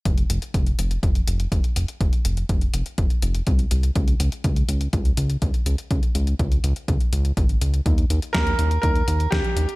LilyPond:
<<
  \new Staff \with { instrumentName = "Grand piano" } { \time 4/4 \key f \minor \tempo 4 = 123 r1 | r1 | r1 | r1 |
r4 bes'4 bes'4 g'4 | }
  \new Staff \with { instrumentName = "Analog synth bass" } { \clef bass \time 4/4 \key f \minor f,,8 f,,8 f,,8 f,,8 f,,8 f,,8 f,,8 f,,8 | f,,8 f,,8 f,,8 f,,8 f,,8 f,,8 c,8 c,8 | des,8 des,8 des,8 des,8 des,8 des,8 des,8 des,8 | des,8 des,8 des,8 des,8 des,8 des,8 aes,,8 des,8 |
ees,8 ees,8 ees,8 ees,8 ees,8 ees,8 ees,8 ees,8 | }
  \new DrumStaff \with { instrumentName = "Drums" } \drummode { \time 4/4 <hh bd>16 hh16 hh16 hh16 <hh bd>16 hh16 hh16 hh16 <hh bd>16 hh16 hh16 hh16 <hh bd>16 hh16 hh16 hh16 | <hh bd>16 hh16 hh16 hh16 <hh bd>16 hh16 hh16 hh16 <hh bd>16 hh16 hh16 hh16 <hh bd>16 hh16 hh16 hh16 | <hh bd>16 hh16 hh16 hh16 <hh bd>16 hh16 hh16 hh16 <hh bd>16 hh16 hh16 hh16 <hh bd>16 hh16 hh16 hh16 | <hh bd>16 hh16 hh16 hh16 <hh bd>16 hh16 hh16 hh16 <hh bd>16 hh16 hh16 hh16 <hh bd>16 hh16 hh16 hh16 |
<hh bd>16 hh16 hh16 hh16 <hh bd sn>16 hh16 hh16 hh16 <hh bd>16 hh16 hh16 hh16 <hh bd sn>16 hh16 hh16 hh16 | }
>>